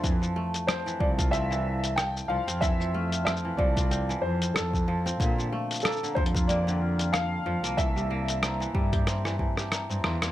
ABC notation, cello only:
X:1
M:4/4
L:1/16
Q:"Swing 16ths" 1/4=93
K:F
V:1 name="Cello" clef=bass
F,,2 z4 C,,8 C,, F,,- | F,,6 C,,4 F,,2 F,,4 | B,,2 z4 F,,8 F,, C,,- | C,,6 G,,4 z3 G,, E,,2 |]